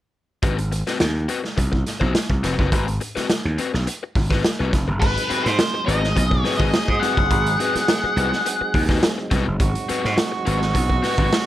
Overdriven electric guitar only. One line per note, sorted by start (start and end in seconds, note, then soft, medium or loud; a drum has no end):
0.43 0.57 C4 medium
0.43 0.57 F#4 medium
0.43 0.56 B4 medium
0.58 muted overdriven electric guitar stroke soft
0.72 muted overdriven electric guitar stroke soft
0.87 0.97 C4 medium
0.87 0.97 F#4 medium
0.87 0.96 B4 medium
1.01 muted overdriven electric guitar stroke soft
1.28 1.39 C4 medium
1.28 1.40 F#4 medium
1.28 1.40 B4 medium
1.44 muted overdriven electric guitar stroke soft
1.57 muted overdriven electric guitar stroke soft
1.72 muted overdriven electric guitar stroke soft
2.00 2.13 C4 medium
2.00 2.13 F#4 medium
2.00 2.13 C5 medium
2.14 muted overdriven electric guitar stroke soft
2.30 muted overdriven electric guitar stroke soft
2.43 2.54 C4 medium
2.43 2.55 F#4 medium
2.43 2.55 B4 medium
2.59 2.69 C4 soft
2.59 2.69 F#4 medium
2.59 2.68 B4 medium
2.72 2.86 C4 medium
2.72 2.86 F#4 medium
2.72 2.86 B4 medium
2.87 muted overdriven electric guitar stroke soft
3.01 muted overdriven electric guitar stroke soft
3.15 3.26 C4 medium
3.15 3.26 F#4 medium
3.15 3.26 B4 medium
3.30 muted overdriven electric guitar stroke soft
3.58 3.69 C4 medium
3.58 3.70 F#4 medium
3.58 3.70 B4 medium
3.74 muted overdriven electric guitar stroke soft
3.87 muted overdriven electric guitar stroke soft
4.03 muted overdriven electric guitar stroke soft
4.30 4.43 C4 medium
4.30 4.43 F#4 medium
4.30 4.43 B4 medium
4.44 muted overdriven electric guitar stroke soft
4.59 4.71 C4 medium
4.59 4.72 F#4 medium
4.59 4.72 B4 medium
4.73 muted overdriven electric guitar stroke soft
4.88 muted overdriven electric guitar stroke soft
5.30 5.44 C4 medium
5.30 5.45 F#4 medium
5.30 5.45 B4 medium
5.59 muted overdriven electric guitar stroke soft
5.74 muted overdriven electric guitar stroke medium
5.87 6.01 C4 medium
5.87 6.01 F#4 medium
5.87 6.01 B4 medium
6.02 muted overdriven electric guitar stroke soft
6.16 muted overdriven electric guitar stroke soft
6.31 muted overdriven electric guitar stroke soft
6.44 6.55 C4 medium
6.44 6.56 F#4 medium
6.44 6.56 B4 medium
6.59 6.70 C4 medium
6.59 6.70 F#4 medium
6.59 6.69 B4 medium
6.88 muted overdriven electric guitar stroke soft
7.02 7.16 C4 medium
7.02 7.16 F#4 medium
7.02 7.17 B4 medium
7.18 muted overdriven electric guitar stroke soft
7.60 7.74 C4 medium
7.60 7.74 F#4 medium
7.60 7.74 B4 medium
7.89 muted overdriven electric guitar stroke soft
8.04 muted overdriven electric guitar stroke medium
8.17 8.31 C4 medium
8.17 8.31 F#4 medium
8.17 8.31 B4 medium
8.32 muted overdriven electric guitar stroke soft
8.46 muted overdriven electric guitar stroke soft
8.61 muted overdriven electric guitar stroke soft
8.89 9.02 C4 medium
8.89 9.02 F#4 medium
8.89 9.02 B4 medium
9.03 muted overdriven electric guitar stroke soft
9.18 muted overdriven electric guitar stroke soft
9.31 9.45 C4 medium
9.31 9.45 F#4 loud
9.31 9.45 B4 loud
9.46 muted overdriven electric guitar stroke soft
9.89 10.03 C4 medium
9.89 10.03 F#4 medium
9.89 10.03 B4 medium
10.17 muted overdriven electric guitar stroke soft
10.32 muted overdriven electric guitar stroke medium
10.46 10.60 C4 medium
10.46 10.60 F#4 medium
10.46 10.60 B4 medium
10.61 muted overdriven electric guitar stroke soft
10.74 muted overdriven electric guitar stroke soft
10.89 muted overdriven electric guitar stroke soft
11.02 11.14 C4 medium
11.02 11.14 F#4 medium
11.02 11.14 B4 medium
11.19 11.29 C4 medium
11.19 11.29 F#4 medium
11.19 11.28 B4 medium